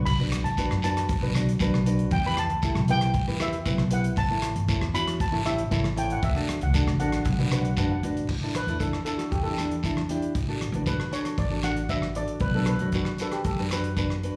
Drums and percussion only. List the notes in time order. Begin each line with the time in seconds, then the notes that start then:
0.06 kick, closed hi-hat, crash, long guiro
0.32 cross-stick, closed hi-hat
0.46 closed hi-hat
0.57 kick, closed hi-hat, short guiro
0.71 cross-stick
0.82 closed hi-hat, short guiro
0.97 cross-stick, closed hi-hat
1.09 kick, closed hi-hat, long guiro
1.34 cross-stick, closed hi-hat, short guiro
1.49 closed hi-hat
1.59 kick, closed hi-hat, short guiro
1.74 cross-stick
1.86 closed hi-hat
1.99 closed hi-hat
2.11 kick, closed hi-hat, long guiro
2.37 cross-stick, closed hi-hat
2.50 closed hi-hat
2.62 kick, closed hi-hat, short guiro
2.75 cross-stick
2.88 closed hi-hat
3.01 cross-stick, closed hi-hat
3.14 kick, closed hi-hat, long guiro
3.40 cross-stick, closed hi-hat, short guiro
3.53 closed hi-hat
3.65 kick, closed hi-hat, short guiro
3.78 cross-stick
3.91 closed hi-hat
4.04 closed hi-hat
4.16 kick, closed hi-hat, long guiro
4.42 cross-stick, closed hi-hat
4.56 closed hi-hat
4.68 kick, closed hi-hat, short guiro
4.82 cross-stick
4.95 closed hi-hat, short guiro
5.08 cross-stick, closed hi-hat
5.20 kick, closed hi-hat, long guiro
5.46 cross-stick, closed hi-hat, short guiro
5.58 closed hi-hat
5.71 kick, closed hi-hat, short guiro
5.84 cross-stick
5.97 closed hi-hat
6.10 closed hi-hat
6.23 kick, closed hi-hat, long guiro
6.49 cross-stick, closed hi-hat
6.61 closed hi-hat
6.74 kick, closed hi-hat, short guiro
6.88 cross-stick
7.00 closed hi-hat
7.12 cross-stick, closed hi-hat
7.25 kick, closed hi-hat, long guiro
7.50 cross-stick, closed hi-hat, short guiro
7.65 closed hi-hat
7.77 kick, closed hi-hat, short guiro
8.03 closed hi-hat
8.17 closed hi-hat
8.27 kick, crash, long guiro
8.55 cross-stick, closed hi-hat
8.68 closed hi-hat
8.79 kick, closed hi-hat, short guiro
8.93 cross-stick
9.06 closed hi-hat, short guiro
9.19 cross-stick, closed hi-hat
9.32 kick, closed hi-hat, long guiro
9.57 cross-stick, closed hi-hat, short guiro
9.71 closed hi-hat
9.83 kick, closed hi-hat, short guiro
9.97 cross-stick
10.09 closed hi-hat
10.22 closed hi-hat
10.35 kick, closed hi-hat, long guiro
10.61 cross-stick, closed hi-hat
10.74 closed hi-hat
10.86 kick, closed hi-hat, short guiro
11.00 cross-stick
11.13 closed hi-hat, short guiro
11.25 cross-stick, closed hi-hat
11.38 kick, closed hi-hat, long guiro
11.63 cross-stick, closed hi-hat, short guiro
11.77 closed hi-hat
11.89 kick, closed hi-hat, short guiro
12.02 cross-stick
12.15 closed hi-hat
12.28 closed hi-hat
12.40 kick, closed hi-hat, long guiro
12.66 cross-stick, closed hi-hat
12.79 closed hi-hat
12.92 kick, closed hi-hat, short guiro
13.05 cross-stick
13.18 closed hi-hat, short guiro
13.32 cross-stick, closed hi-hat
13.44 kick, closed hi-hat, long guiro
13.71 cross-stick, closed hi-hat, short guiro
13.84 closed hi-hat
13.97 kick, closed hi-hat, short guiro
14.10 cross-stick
14.23 closed hi-hat